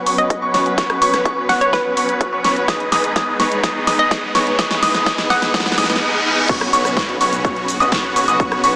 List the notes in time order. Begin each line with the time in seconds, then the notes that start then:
Already playing: F#3 C#4 B4, riser
0.06 B3 C#4 F#4 B4 C#5 C#6, open hi-hat
0.18 D#5, closed hi-hat
0.30 kick, closed hi-hat
0.42 B3 C#4 F#4 B4 C#5 C#6
0.54 B3 C#4 F#4 B4 C#5 C#6, snare, open hi-hat
0.66 closed hi-hat
0.78 B3 C#4 F#4 B4 C#5 C#6, kick, snare, closed hi-hat
0.90 cross-stick, closed hi-hat
1.02 B3 C#4 F#4 B4 C#5 C#6, open hi-hat
1.14 cross-stick, snare, closed hi-hat
1.25 B3 C#4 F#4 B4 C#5 C#6, kick, closed hi-hat
1.49 B3 C#4 F#4 B4 C#5 F#5 C#6, snare, open hi-hat
1.61 C#5, closed hi-hat
1.73 B3 C#4 F#4 B4 C#5 C#6, kick, snare, closed hi-hat
1.97 B3 C#4 F#4 B4 C#5 C#6, open hi-hat
2.09 closed hi-hat
2.21 kick, closed hi-hat
2.33 B3 C#4 F#4 B4 C#5 C#6
2.44 B3 C#4 F#4 B4 C#5 C#6, snare, open hi-hat
2.56 closed hi-hat
2.68 G#3 B3 D#4 G#4 B4 D#5 D#6, kick, snare, closed hi-hat
2.80 closed hi-hat
2.92 B3 D#4 G#4 B4 D#5 D#6, snare, open hi-hat
3.04 closed hi-hat
3.16 B3 D#4 G#4 B4 D#5 D#6, kick, snare, closed hi-hat
3.40 B3 D#4 G#4 B4 C#5 C#6, snare, open hi-hat
3.52 closed hi-hat
3.63 B3 D#4 G#4 B4 D#5 D#6, kick, snare, closed hi-hat
3.87 B3 D#4 G#4 B4 D#5 D#6, snare, open hi-hat
3.99 D#5, closed hi-hat
4.11 B3 D#4 G#4 B4 D#5 D#6, kick, snare, closed hi-hat
4.35 B3 D#4 G#4 B4 C#5 C#6, snare, open hi-hat
4.47 closed hi-hat
4.59 B3 D#4 E4 G#4 B4 D#5 D#6, kick, snare, closed hi-hat
4.71 snare, closed hi-hat
4.83 B3 D#4 G#4 B4 D#5 D#6, snare, open hi-hat
4.95 snare, closed hi-hat
5.06 B3 D#4 G#4 B4 D#5 D#6, kick, snare, closed hi-hat
5.18 snare, closed hi-hat
5.30 B3 D#4 G#4 B4 D#5 F#5 D#6, snare, open hi-hat
5.42 snare, closed hi-hat
5.54 B3 D#4 G#4 B4 D#5 D#6, kick, snare, closed hi-hat, reverse cymbal
5.60 snare
5.66 snare
5.72 snare
5.78 B3 D#4 G#4 B4 D#5 D#6, snare, open hi-hat
5.84 snare
5.90 snare, closed hi-hat
5.96 snare
6.02 B3 D#4 G#4 B4 D#5
6.26 B3 D#4 G#4 B4 D#5
6.49 B1 C#3 B3 C#4 F#4 B4 C#5 C#6, kick, closed hi-hat, crash, downlifter, cabasa
6.61 cross-stick, closed hi-hat
6.73 B1 B3 C#4 F#4 B4 C#5 C#6, open hi-hat, cabasa
6.85 cross-stick, closed hi-hat, cabasa
6.97 B1 B3 C#4 F#4 B4 C#5 C#6, kick, snare, closed hi-hat, cabasa
7.09 closed hi-hat
7.21 B1 B3 C#4 F#4 B4 C#5 C#6, open hi-hat, cabasa
7.33 closed hi-hat, cabasa
7.45 B1 B3 C#4 F#4 B4 C#5 C#6, kick, closed hi-hat, cabasa
7.56 closed hi-hat
7.68 open hi-hat, cabasa
7.80 B1 B3 C#4 F#4 B4 D#5 D#6, closed hi-hat, cabasa
7.92 B1 B3 C#4 F#4 B4 C#5 C#6, kick, snare, closed hi-hat, cabasa
8.04 closed hi-hat
8.16 B1 B3 C#4 F#4 B4 C#5 C#6, open hi-hat, cabasa
8.28 B1 B3 C#4 F#4 B4 D#5 D#6, closed hi-hat, cabasa
8.40 B1 B3 C#4 F#4 B4 C#5 C#6, kick, closed hi-hat, cabasa
8.52 cross-stick, closed hi-hat
8.64 B1 B3 C#4 F#4 B4 C#5 C#6, open hi-hat, cabasa